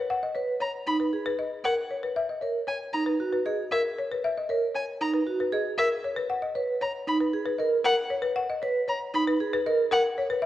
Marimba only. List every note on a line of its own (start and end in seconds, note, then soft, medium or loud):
0.00 0.13 B4 medium
0.10 0.27 F#5 medium
0.23 0.40 D#5 medium
0.35 0.52 C#5 soft
0.60 0.78 C#5 soft
1.00 1.17 B4 medium
1.26 1.43 B4 medium
1.39 1.56 D#5 soft
1.65 1.82 A#4 medium
1.91 2.07 C#5 soft
2.03 2.20 B4 medium
2.16 2.33 E5 medium
2.29 2.46 D#5 soft
2.41 2.59 C#5 soft
2.67 2.85 C#5 soft
3.06 3.24 B4 medium
3.33 3.50 B4 medium
3.46 3.63 D#5 medium
3.72 3.89 A#4 medium
3.99 4.15 C#5 soft
4.12 4.28 B4 medium
4.24 4.41 E5 medium
4.38 4.54 D#5 medium
4.50 4.66 C#5 soft
4.75 4.92 C#5 soft
5.14 5.31 B4 medium
5.40 5.57 B4 medium
5.53 5.70 D#5 soft
5.79 5.95 A#4 medium
6.05 6.21 C#5 medium
6.17 6.34 B4 medium
6.30 6.47 F#5 medium
6.42 6.60 D#5 medium
6.55 6.73 C#5 soft
6.81 6.99 C#5 medium
7.21 7.38 B4 medium
7.46 7.63 B4 medium
7.59 7.76 D#5 medium
7.85 8.02 A#4 medium
8.10 8.28 C#5 medium
8.22 8.40 B4 medium
8.36 8.54 F#5 medium
8.50 8.67 D#5 medium
8.62 8.79 C#5 medium
8.88 9.05 C#5 medium
9.27 9.44 B4 medium
9.53 9.70 B4 medium
9.66 9.83 D#5 medium
9.91 10.09 A#4 medium
10.18 10.35 C#5 medium
10.30 10.46 B4 medium
10.42 10.46 E5 medium